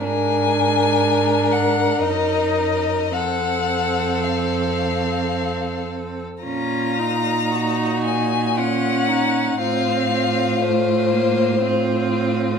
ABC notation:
X:1
M:3/4
L:1/8
Q:1/4=57
K:Fphr
V:1 name="Violin"
a3 g e2 | g2 f3 z | b3 a g2 | f2 c3 z |]
V:2 name="Violin"
B6 | =A6 | F2 G2 F E | F F3 F2 |]
V:3 name="Viola"
=D4 E2 | C6 | D E3 D2 | C2 =A, B, C2 |]
V:4 name="Cello" clef=bass
A,,4 G,,2 | F,,6 | B,,6 | =A,,6 |]